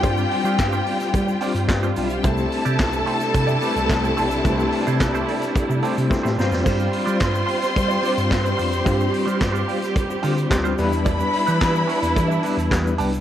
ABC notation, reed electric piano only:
X:1
M:4/4
L:1/8
Q:1/4=109
K:Gmix
V:1 name="Reed electric piano"
[G,CDFc]4 z [G,CDFc] [G,CDFc]2 | [A,CEGc]4 z [A,CEGB] [A,CEGc]2 | [A,CEGBc]4 z [A,CEGc] [A,CEGc] [G,CDFc]- | [G,CDFc]3 z2 [G,CDFc] [G,CDFBc]2 |
[G,CDFc]4 z [G,CDFc] [G,CDFc] [G,B,DEB]- | [G,B,DEB]3 z2 [G,B,DEB] [G,B,DEB]2 |]